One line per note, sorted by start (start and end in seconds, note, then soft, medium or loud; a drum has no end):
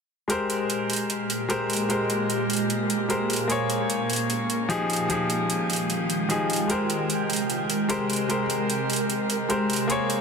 0.28 4.86 A#2 medium
0.28 1.46 G#3 medium
0.28 3.46 G#3 medium
0.28 3.46 A#3 medium
0.28 1.47 G4 medium
0.28 3.46 G4 medium
0.28 1.48 A#4 medium
0.28 1.48 C5 medium
0.28 closed hi-hat medium
0.50 closed hi-hat medium
0.70 closed hi-hat medium
0.90 closed hi-hat soft
0.93 closed hi-hat medium
0.96 closed hi-hat medium
1.10 closed hi-hat medium
1.30 closed hi-hat medium
1.49 1.87 G#3 medium
1.49 1.87 G4 medium
1.49 1.88 A#4 medium
1.49 1.88 C5 loud
1.49 closed hi-hat medium
1.70 closed hi-hat soft
1.73 closed hi-hat medium
1.76 closed hi-hat medium
1.89 2.00 G#3 medium
1.89 2.00 G4 medium
1.89 2.01 A#4 medium
1.89 2.01 C5 medium
1.89 closed hi-hat medium
2.10 closed hi-hat medium
2.30 closed hi-hat medium
2.50 closed hi-hat soft
2.53 closed hi-hat medium
2.56 closed hi-hat medium
2.70 closed hi-hat medium
2.90 closed hi-hat medium
3.09 3.47 G#3 medium
3.09 3.47 G4 medium
3.09 3.48 A#4 medium
3.09 3.48 C5 medium
3.09 closed hi-hat medium
3.30 closed hi-hat soft
3.33 closed hi-hat medium
3.36 closed hi-hat medium
3.48 4.66 A#3 medium
3.48 4.88 A#3 medium
3.48 4.88 C#4 medium
3.48 4.67 G#4 medium
3.48 4.88 G#4 medium
3.48 4.68 C5 medium
3.48 4.68 C#5 medium
3.48 closed hi-hat medium
3.70 closed hi-hat medium
3.90 closed hi-hat medium
4.10 closed hi-hat soft
4.13 closed hi-hat medium
4.16 closed hi-hat medium
4.30 closed hi-hat medium
4.50 closed hi-hat medium
4.69 5.07 F3 medium
4.69 5.07 D#4 medium
4.69 5.08 G4 medium
4.69 5.08 G#4 loud
4.69 closed hi-hat medium
4.90 6.68 D#3 medium
4.90 10.21 G#3 medium
4.90 6.68 F4 medium
4.90 9.86 G5 medium
4.90 closed hi-hat soft
4.93 closed hi-hat medium
4.96 closed hi-hat medium
5.09 5.20 F3 medium
5.09 5.20 D#4 medium
5.09 5.21 G4 medium
5.09 5.21 G#4 medium
5.09 closed hi-hat medium
5.30 closed hi-hat medium
5.50 closed hi-hat medium
5.70 closed hi-hat soft
5.73 closed hi-hat medium
5.76 closed hi-hat medium
5.90 closed hi-hat medium
6.10 closed hi-hat medium
6.29 6.67 F3 medium
6.29 6.67 D#4 medium
6.29 6.68 G4 medium
6.29 6.68 G#4 medium
6.29 closed hi-hat medium
6.50 closed hi-hat soft
6.53 closed hi-hat medium
6.56 closed hi-hat medium
6.68 9.86 C3 medium
6.68 7.86 G#3 medium
6.68 7.87 G4 medium
6.68 10.21 A#4 medium
6.68 7.88 A#4 medium
6.68 7.88 C5 medium
6.68 closed hi-hat medium
6.90 closed hi-hat medium
7.10 closed hi-hat medium
7.30 closed hi-hat soft
7.33 closed hi-hat medium
7.36 closed hi-hat medium
7.50 closed hi-hat medium
7.70 closed hi-hat medium
7.89 8.27 G#3 medium
7.89 8.27 G4 medium
7.89 8.28 A#4 medium
7.89 8.28 C5 loud
7.89 closed hi-hat medium
8.10 closed hi-hat soft
8.13 closed hi-hat medium
8.16 closed hi-hat medium
8.29 8.40 G#3 medium
8.29 8.40 G4 medium
8.29 8.41 A#4 medium
8.29 8.41 C5 medium
8.29 closed hi-hat medium
8.50 closed hi-hat medium
8.70 closed hi-hat medium
8.90 closed hi-hat soft
8.93 closed hi-hat medium
8.96 closed hi-hat medium
9.10 closed hi-hat medium
9.30 closed hi-hat medium
9.49 9.87 G#3 medium
9.49 9.87 G4 medium
9.49 9.88 A#4 medium
9.49 9.88 C5 medium
9.49 closed hi-hat medium
9.70 closed hi-hat soft
9.73 closed hi-hat medium
9.76 closed hi-hat medium
9.88 10.21 A#3 medium
9.88 10.21 G#4 medium
9.88 10.21 C5 medium
9.88 10.21 C#5 loud
9.88 closed hi-hat medium
10.10 closed hi-hat medium